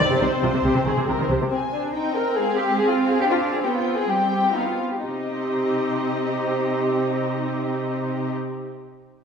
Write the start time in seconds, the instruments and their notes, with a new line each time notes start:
Already playing: viola section C4, violin section G4 C5 D5
0.10 cello section C3, viola section C3
0.20 double bass section C2, viola section C3, cello section C3, violin section D#4 C5
0.42 double bass section C2, viola section C3, cello section C3, violin section F4
0.54 cello section C3, viola section C3
0.63 double bass section C2, viola section C3, cello section C3, violin section G4
0.75 cello section C3, viola section C3
0.85 double bass section C2, cello section C3, viola section D#3, violin section G#4
0.97 cello section C3, viola section C3
1.08 double bass section C2, cello section C3, viola section C3, violin section A#4
1.18 cello section C3, viola section D#3
1.29 double bass section C2, cello section C3, viola section C3, violin section C5
1.40 cello section C3, viola section C3
1.52 violin section C4 G#5, viola section C4
1.72 violin section D4
1.93 violin section D#4 G5
2.15 violin section A#4
2.35 cello section G#3, violin section G#4 F5
2.57 violin section G4
2.78 cello section C4, violin section G#4 F5
2.89 violin section F4
3.10 violin section G#4
3.21 cello section D4, violin section G4
3.31 violin section F4
3.53 violin section G#4
3.63 cello section B3, violin section G4 G5
3.76 violin section F4
3.97 violin section G#4
4.09 cello section G3, violin section G4 G5
4.32 violin section G4
4.54 cello section B3, violin section D#4 F5
4.68 violin section F4
4.92 violin section G4
5.03 cello section C3, viola section C4 G4, violin section D#4 D#5